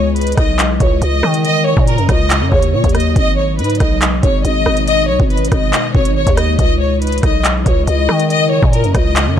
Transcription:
0.00 0.35 C#2 loud
0.00 3.13 C#3 medium
0.00 1.43 E3 medium
0.00 1.41 G#3 medium
0.00 1.43 E4 medium
0.00 0.14 C#5 medium
0.16 0.35 B4 medium
0.16 closed hi-hat medium
0.21 closed hi-hat medium
0.27 closed hi-hat medium
0.32 closed hi-hat medium
0.37 0.79 B1 loud
0.37 0.57 D#5 medium
0.37 kick loud
0.37 cross-stick loud
0.37 closed hi-hat medium
0.59 clap loud
0.59 closed hi-hat medium
0.80 1.01 C#2 loud
0.80 0.99 C#5 medium
0.80 kick loud
0.80 closed hi-hat medium
1.02 1.22 C#2 loud
1.02 1.42 D#5 medium
1.02 closed hi-hat medium
1.23 1.75 D#3 loud
1.23 cross-stick medium
1.34 closed hi-hat medium
1.45 3.14 F#3 medium
1.45 3.14 A#3 medium
1.45 6.55 D#4 medium
1.45 1.64 D#5 loud
1.45 closed hi-hat medium
1.66 1.85 C#5 medium
1.77 2.00 A#2 loud
1.77 kick loud
1.87 2.07 A#4 medium
1.87 closed hi-hat medium
1.98 2.08 F#2 loud
1.98 closed hi-hat soft
2.09 2.43 C#2 loud
2.09 2.49 D#5 medium
2.09 kick loud
2.09 cross-stick medium
2.09 closed hi-hat medium
2.30 clap loud
2.30 closed hi-hat medium
2.41 2.51 F#2 loud
2.52 2.75 D#2 loud
2.52 2.71 C#5 medium
2.52 kick loud
2.62 closed hi-hat medium
2.73 2.83 A#2 loud
2.73 2.92 C#5 medium
2.84 3.15 D#2 loud
2.84 kick medium
2.84 closed hi-hat soft
2.89 closed hi-hat medium
2.95 3.14 D#5 medium
2.95 cross-stick medium
2.95 closed hi-hat medium
3.00 closed hi-hat medium
3.16 3.60 G#1 loud
3.16 6.55 B2 medium
3.16 6.55 D#3 medium
3.16 8.26 G#3 medium
3.16 3.35 D#5 loud
3.16 kick loud
3.16 closed hi-hat medium
3.38 3.57 C#5 medium
3.58 3.79 G#2 loud
3.58 3.78 B4 medium
3.58 closed hi-hat medium
3.64 closed hi-hat medium
3.70 closed hi-hat medium
3.75 closed hi-hat medium
3.80 4.21 B1 loud
3.80 3.99 D#5 medium
3.80 kick loud
3.80 cross-stick medium
3.80 closed hi-hat medium
4.02 clap loud
4.02 closed hi-hat medium
4.23 4.44 G#1 loud
4.23 4.42 C#5 medium
4.23 kick loud
4.23 closed hi-hat medium
4.45 4.65 G#1 loud
4.45 4.85 D#5 medium
4.45 closed hi-hat medium
4.66 5.10 G#1 loud
4.66 cross-stick medium
4.77 closed hi-hat medium
4.87 5.06 D#5 loud
4.87 closed hi-hat medium
5.09 5.19 B1 loud
5.09 5.28 C#5 medium
5.20 5.50 G#1 loud
5.20 kick loud
5.30 5.49 B4 medium
5.30 closed hi-hat soft
5.37 closed hi-hat medium
5.45 closed hi-hat medium
5.52 5.72 G#1 loud
5.52 5.92 D#5 medium
5.52 kick loud
5.52 cross-stick medium
5.52 closed hi-hat medium
5.73 clap loud
5.73 closed hi-hat medium
5.94 6.25 G#1 loud
5.94 6.13 C#5 medium
5.94 kick medium
6.05 closed hi-hat medium
6.16 6.35 C#5 medium
6.27 6.58 D#2 loud
6.27 kick medium
6.27 closed hi-hat medium
6.37 6.57 D#5 medium
6.37 cross-stick loud
6.37 closed hi-hat loud
6.58 7.21 C#2 loud
6.58 8.29 C#3 medium
6.58 8.29 E3 medium
6.58 8.29 E4 medium
6.58 6.78 D#5 loud
6.58 kick loud
6.58 closed hi-hat medium
6.80 6.99 C#5 medium
7.02 7.21 B4 medium
7.02 closed hi-hat medium
7.07 closed hi-hat medium
7.12 closed hi-hat medium
7.18 closed hi-hat medium
7.23 7.64 B1 loud
7.23 7.42 D#5 medium
7.23 kick loud
7.23 cross-stick medium
7.23 closed hi-hat medium
7.45 clap loud
7.45 closed hi-hat medium
7.66 7.87 C#2 loud
7.66 7.85 C#5 medium
7.66 kick loud
7.66 closed hi-hat medium
7.87 8.08 C#2 loud
7.87 8.28 D#5 medium
7.87 closed hi-hat medium
8.09 8.60 D#3 loud
8.09 cross-stick medium
8.20 closed hi-hat medium
8.30 9.40 C#3 medium
8.30 9.40 F#3 medium
8.30 9.40 A#3 medium
8.30 9.40 D#4 medium
8.30 8.49 D#5 loud
8.30 closed hi-hat medium
8.52 8.71 C#5 medium
8.63 8.85 A#2 loud
8.63 kick loud
8.73 8.92 A#4 medium
8.73 closed hi-hat medium
8.84 8.94 F#2 loud
8.84 closed hi-hat soft
8.95 9.28 C#2 loud
8.95 9.35 D#5 medium
8.95 kick loud
8.95 cross-stick medium
8.95 closed hi-hat medium
9.16 clap loud
9.16 closed hi-hat medium
9.27 9.37 F#2 loud

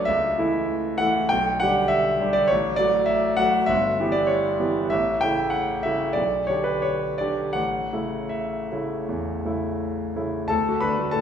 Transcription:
0.05 0.38 C#2 medium
0.05 0.99 E5 medium
0.38 0.96 E3 soft
0.38 0.96 A3 soft
0.38 0.96 E4 soft
0.98 1.28 E3 soft
0.98 1.28 A3 soft
0.98 1.29 F#5 medium
1.02 1.28 E4 soft
1.29 1.61 B1 medium
1.29 1.60 G5 medium
1.60 2.17 D3 soft
1.60 2.17 G3 soft
1.60 2.17 G4 soft
1.60 1.90 F#5 medium
1.88 2.34 E5 medium
2.20 2.47 D3 soft
2.20 2.47 G3 soft
2.20 2.47 G4 soft
2.33 2.49 D5 medium
2.48 2.79 A1 medium
2.48 2.78 C#5 medium
2.76 3.34 F#3 soft
2.76 3.34 A3 soft
2.76 3.35 F#4 soft
2.76 3.07 D5 medium
3.06 3.37 E5 medium
3.37 3.66 F#3 soft
3.37 3.66 A3 soft
3.37 3.66 F#4 soft
3.37 3.68 F#5 medium
3.66 3.98 G1 medium
3.66 4.13 E5 medium
4.00 4.56 E3 soft
4.00 4.57 B3 soft
4.00 4.57 G4 soft
4.12 4.28 D5 medium
4.27 4.59 C#5 medium
4.60 4.88 E3 soft
4.60 4.88 B3 soft
4.60 4.88 G4 soft
4.90 5.22 A1 medium
4.90 5.22 E5 medium
5.21 5.82 C#3 soft
5.21 5.82 A3 soft
5.21 5.83 E4 soft
5.21 5.53 G5 medium
5.50 5.84 F#5 medium
5.83 6.14 C#3 soft
5.83 6.14 A3 soft
5.83 6.15 E4 soft
5.83 6.16 E5 medium
6.13 6.48 B1 soft
6.13 6.48 D5 medium
6.47 7.16 D3 soft
6.47 7.16 D4 soft
6.47 7.16 G4 soft
6.47 6.66 C#5 medium
6.64 6.83 B4 medium
6.82 7.19 C#5 medium
7.18 7.54 D3 soft
7.18 7.54 D4 soft
7.18 7.54 G4 soft
7.18 7.56 D5 medium
7.53 7.93 A1 soft
7.53 8.32 F#5 medium
7.93 8.67 C#3 soft
7.93 8.67 A3 soft
7.93 8.67 E4 soft
8.29 10.15 E5 medium
8.72 9.06 C#3 soft
8.72 9.06 A3 soft
8.72 9.06 E4 soft
9.09 9.44 E2 soft
9.45 10.13 C#3 soft
9.45 10.13 A3 soft
9.45 10.13 E4 soft
10.16 10.47 C#3 soft
10.16 10.47 A3 soft
10.16 10.47 E4 soft
10.48 10.66 D2 soft
10.48 10.79 A4 medium
10.48 10.81 A5 medium
10.69 10.82 A3 soft
10.69 10.82 F#4 soft
10.80 11.07 D3 soft
10.80 11.10 B4 medium
10.80 11.12 B5 medium
10.99 11.12 A3 soft
10.99 11.12 F#4 soft
11.11 11.21 A2 soft
11.11 11.21 A4 soft
11.11 11.21 A5 medium

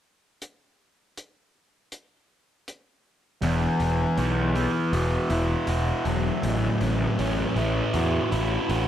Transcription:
0.42 closed hi-hat medium
1.17 closed hi-hat soft
1.92 closed hi-hat soft
2.68 closed hi-hat soft
3.42 3.66 E1 medium
3.42 5.31 E2 medium
3.42 8.88 E2 medium
3.42 8.88 E4 medium
3.42 open hi-hat medium
3.80 4.04 E1 medium
3.80 open hi-hat soft
4.18 4.65 B1 medium
4.18 6.06 B3 medium
4.18 open hi-hat medium
4.55 5.31 E4 medium
4.55 open hi-hat soft
4.93 5.17 E1 medium
4.93 5.68 F#4 medium
4.93 open hi-hat medium
5.30 5.54 E1 medium
5.30 7.57 E4 medium
5.30 open hi-hat soft
5.67 5.92 E1 medium
5.67 7.60 F#4 medium
5.67 open hi-hat medium
6.05 6.29 E1 medium
6.05 7.60 F#3 medium
6.05 open hi-hat soft
6.43 6.67 A1 medium
6.43 8.32 A2 medium
6.43 open hi-hat medium
6.81 7.05 A1 medium
6.81 open hi-hat soft
7.19 7.43 A1 medium
7.19 8.88 C#4 medium
7.19 open hi-hat medium
7.56 7.80 A1 medium
7.56 8.31 E4 medium
7.56 open hi-hat soft
7.94 8.18 E2 medium
7.94 8.70 F#4 medium
7.94 open hi-hat medium
8.31 8.56 A1 medium
8.31 8.88 E4 medium
8.31 open hi-hat soft
8.69 8.88 A1 medium
8.69 8.88 F#4 medium
8.69 open hi-hat medium

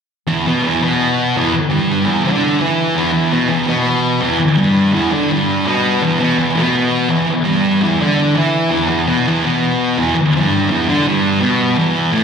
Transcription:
0.27 0.45 E2 medium
0.27 0.45 E3 loud
0.46 0.64 B2 medium
0.46 0.64 B3 loud
0.62 0.80 E2 medium
0.62 0.81 E3 medium
0.81 1.35 B2 medium
0.81 1.35 B3 medium
1.37 1.53 E2 medium
1.37 1.54 E3 loud
1.54 muted distorted electric guitar stroke medium
1.70 2.05 G2 medium
1.70 2.07 G3 loud
2.06 2.24 E2 medium
2.06 2.25 E3 medium
2.24 2.60 D3 medium
2.24 2.61 D4 medium
2.60 2.96 E3 medium
2.60 2.96 E4 loud
2.95 3.11 E2 medium
2.95 3.13 E3 loud
3.13 3.31 E2 medium
3.13 3.32 E3 medium
3.32 3.50 B2 medium
3.32 3.50 B3 medium
3.48 3.67 E2 medium
3.48 3.67 E3 medium
3.66 4.21 B2 medium
3.66 4.22 B3 medium
4.21 4.39 E2 medium
4.21 4.40 E3 loud
4.40 muted distorted electric guitar stroke medium
4.57 4.93 G2 medium
4.57 4.94 G3 loud
4.93 5.11 E2 medium
4.93 5.12 E3 loud
5.11 5.29 D3 medium
5.11 5.30 D4 medium
5.31 5.66 G2 loud
5.31 5.67 G3 loud
5.65 6.01 B2 medium
5.65 6.02 B3 loud
6.02 6.20 E2 medium
6.02 6.20 E3 loud
6.19 6.37 B2 medium
6.19 6.37 B3 medium
6.38 6.56 E2 medium
6.38 6.56 E3 loud
6.55 7.09 B2 medium
6.55 7.10 B3 medium
7.09 7.26 E2 medium
7.09 7.28 E3 loud
7.28 muted distorted electric guitar stroke medium
7.44 7.81 G2 medium
7.44 7.81 G3 loud
7.82 8.00 E2 medium
7.82 8.00 E3 loud
8.00 8.35 D3 medium
8.00 8.36 D4 medium
8.35 8.70 E3 medium
8.35 8.72 E4 medium
8.70 8.87 E2 medium
8.70 8.88 E3 medium
8.89 9.07 E2 loud
8.89 9.07 E3 loud
9.07 9.25 B2 medium
9.07 9.26 B3 loud
9.26 9.44 E2 medium
9.26 9.44 E3 loud
9.43 9.97 B2 medium
9.43 9.98 B3 medium
9.98 10.14 E2 loud
9.98 10.15 E3 loud
10.15 muted distorted electric guitar stroke medium
10.36 10.69 G2 medium
10.36 10.71 G3 loud
10.70 10.87 E2 medium
10.70 10.88 E3 medium
10.88 11.05 D3 medium
10.88 11.06 D4 medium
11.07 11.42 G2 loud
11.07 11.42 G3 loud
11.40 11.76 B2 medium
11.40 11.76 B3 medium
11.77 12.12 E2 medium
11.77 12.13 E3 loud
12.12 12.24 A2 loud
12.12 12.24 A3 loud

